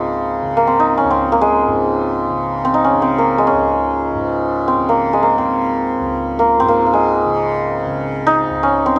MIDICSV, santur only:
0, 0, Header, 1, 2, 480
1, 0, Start_track
1, 0, Tempo, 500000
1, 8630, End_track
2, 0, Start_track
2, 0, Title_t, "Santur"
2, 0, Program_c, 0, 15
2, 0, Note_on_c, 0, 56, 57
2, 0, Note_on_c, 0, 58, 57
2, 0, Note_on_c, 0, 60, 61
2, 0, Note_on_c, 0, 63, 75
2, 0, Note_on_c, 0, 65, 72
2, 541, Note_off_c, 0, 58, 0
2, 545, Note_on_c, 0, 58, 67
2, 602, Note_off_c, 0, 56, 0
2, 642, Note_off_c, 0, 60, 0
2, 646, Note_on_c, 0, 60, 66
2, 760, Note_off_c, 0, 63, 0
2, 764, Note_on_c, 0, 63, 75
2, 937, Note_on_c, 0, 61, 75
2, 994, Note_off_c, 0, 60, 0
2, 1061, Note_on_c, 0, 60, 71
2, 1118, Note_off_c, 0, 61, 0
2, 1264, Note_off_c, 0, 58, 0
2, 1268, Note_on_c, 0, 58, 70
2, 1357, Note_on_c, 0, 56, 73
2, 1403, Note_off_c, 0, 65, 0
2, 2537, Note_off_c, 0, 60, 0
2, 2541, Note_on_c, 0, 60, 75
2, 2626, Note_off_c, 0, 63, 0
2, 2630, Note_on_c, 0, 63, 69
2, 2731, Note_on_c, 0, 61, 69
2, 2788, Note_off_c, 0, 60, 0
2, 2898, Note_on_c, 0, 60, 73
2, 2956, Note_off_c, 0, 61, 0
2, 3052, Note_off_c, 0, 58, 0
2, 3055, Note_on_c, 0, 58, 64
2, 3113, Note_off_c, 0, 56, 0
2, 3248, Note_on_c, 0, 56, 64
2, 3331, Note_on_c, 0, 61, 75
2, 3388, Note_off_c, 0, 60, 0
2, 4490, Note_on_c, 0, 60, 66
2, 4547, Note_off_c, 0, 61, 0
2, 4689, Note_off_c, 0, 58, 0
2, 4693, Note_on_c, 0, 58, 63
2, 4751, Note_off_c, 0, 56, 0
2, 4925, Note_on_c, 0, 56, 58
2, 5014, Note_off_c, 0, 58, 0
2, 5018, Note_on_c, 0, 58, 61
2, 5075, Note_off_c, 0, 56, 0
2, 5162, Note_off_c, 0, 60, 0
2, 5166, Note_on_c, 0, 60, 62
2, 6086, Note_off_c, 0, 63, 0
2, 6131, Note_off_c, 0, 58, 0
2, 6135, Note_on_c, 0, 58, 72
2, 6330, Note_off_c, 0, 60, 0
2, 6334, Note_on_c, 0, 60, 82
2, 6412, Note_off_c, 0, 58, 0
2, 6416, Note_on_c, 0, 58, 71
2, 6585, Note_off_c, 0, 58, 0
2, 6588, Note_on_c, 0, 58, 46
2, 6658, Note_on_c, 0, 56, 63
2, 7935, Note_on_c, 0, 63, 90
2, 8285, Note_on_c, 0, 61, 75
2, 8343, Note_off_c, 0, 60, 0
2, 8504, Note_on_c, 0, 60, 73
2, 8562, Note_off_c, 0, 61, 0
2, 8597, Note_off_c, 0, 63, 0
2, 8601, Note_on_c, 0, 63, 69
2, 8630, Note_off_c, 0, 56, 0
2, 8630, Note_off_c, 0, 58, 0
2, 8630, Note_off_c, 0, 60, 0
2, 8630, Note_off_c, 0, 63, 0
2, 8630, End_track
0, 0, End_of_file